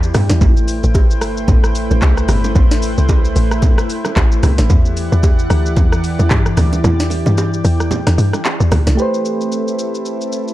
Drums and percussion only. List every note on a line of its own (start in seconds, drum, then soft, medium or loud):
0.03 shaker medium
0.14 cross-stick loud
0.14 open hi-hat medium
0.14 high bongo medium
0.14 low conga medium
0.14 shaker loud
0.30 snare medium
0.30 low bongo medium
0.30 shaker medium
0.41 kick loud
0.41 low conga medium
0.41 shaker medium
0.57 shaker soft
0.68 open hi-hat medium
0.68 shaker loud
0.84 shaker medium
0.94 kick loud
0.94 high bongo medium
0.94 shaker medium
1.11 shaker medium
1.21 cross-stick loud
1.21 open hi-hat soft
1.21 shaker medium
1.37 shaker medium
1.48 kick loud
1.48 high bongo medium
1.48 low conga medium
1.48 shaker medium
1.64 cross-stick loud
1.64 shaker medium
1.75 open hi-hat soft
1.75 shaker medium
1.91 low bongo medium
1.91 shaker soft
2.02 kick medium
2.02 clap medium
2.02 high bongo medium
2.02 shaker medium
2.17 cross-stick medium
2.17 shaker medium
2.29 cross-stick medium
2.29 open hi-hat medium
2.29 high bongo medium
2.29 low conga medium
2.29 shaker loud
2.44 low bongo medium
2.44 shaker medium
2.55 kick loud
2.55 low conga medium
2.55 shaker medium
2.71 snare medium
2.71 shaker medium
2.82 open hi-hat medium
2.82 shaker medium
2.98 shaker medium
3.09 kick loud
3.09 high bongo medium
3.09 shaker medium
3.25 shaker medium
3.36 open hi-hat soft
3.36 shaker medium
3.51 cross-stick loud
3.51 shaker medium
3.62 kick loud
3.62 high bongo medium
3.62 low conga medium
3.62 shaker medium
3.78 cross-stick loud
3.78 shaker medium
3.90 open hi-hat soft
3.90 shaker medium
4.05 cross-stick medium
4.05 low bongo medium
4.05 shaker medium
4.16 kick medium
4.16 clap medium
4.16 high bongo medium
4.16 shaker medium
4.32 shaker medium
4.43 cross-stick medium
4.43 open hi-hat medium
4.43 high bongo medium
4.43 low conga medium
4.43 shaker loud
4.58 snare medium
4.58 low bongo medium
4.58 shaker medium
4.70 kick loud
4.70 low conga medium
4.70 shaker medium
4.85 shaker soft
4.97 open hi-hat medium
4.97 shaker loud
5.12 shaker medium
5.23 kick loud
5.23 high bongo medium
5.23 shaker medium
5.39 shaker medium
5.50 cross-stick loud
5.50 open hi-hat soft
5.50 shaker medium
5.66 shaker medium
5.76 kick loud
5.76 high bongo medium
5.76 low conga medium
5.76 shaker medium
5.92 cross-stick loud
5.92 shaker medium
6.04 open hi-hat soft
6.04 shaker medium
6.19 low bongo medium
6.19 shaker soft
6.30 kick medium
6.30 clap medium
6.30 high bongo medium
6.30 shaker medium
6.46 cross-stick medium
6.46 shaker medium
6.57 cross-stick medium
6.57 open hi-hat medium
6.57 high bongo medium
6.57 low conga medium
6.57 shaker loud
6.73 low bongo medium
6.73 shaker medium
6.84 low conga medium
6.84 shaker medium
7.00 snare medium
7.00 shaker medium
7.10 open hi-hat medium
7.10 low bongo medium
7.10 shaker loud
7.26 low bongo medium
7.26 shaker medium
7.38 high bongo medium
7.38 shaker medium
7.53 shaker medium
7.65 open hi-hat soft
7.65 shaker medium
7.80 cross-stick medium
7.80 shaker medium
7.91 high bongo medium
7.91 low conga medium
7.91 shaker medium
8.07 cross-stick loud
8.07 snare medium
8.07 shaker medium
8.18 open hi-hat soft
8.18 shaker medium
8.33 cross-stick medium
8.33 low bongo medium
8.33 shaker medium
8.45 clap medium
8.45 high bongo medium
8.45 shaker medium
8.60 shaker medium
8.72 cross-stick loud
8.72 open hi-hat medium
8.72 high bongo medium
8.72 low conga medium
8.72 shaker loud
8.87 snare medium
8.87 low bongo medium
8.87 shaker medium
8.98 shaker medium
9.14 shaker soft
9.25 shaker medium
9.41 shaker medium
9.52 shaker medium
9.68 shaker medium
9.79 shaker medium
9.95 shaker medium
10.05 shaker medium
10.21 shaker medium
10.32 shaker medium
10.48 shaker soft